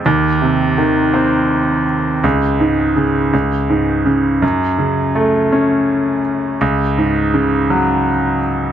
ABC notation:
X:1
M:6/8
L:1/8
Q:3/8=55
K:C#phr
V:1 name="Grand piano" clef=bass
_E,, =C, _E, =C3 | C,, G,, C, C,, G,, C, | F,, C, A, C3 | C,, G,, C, F,3 |]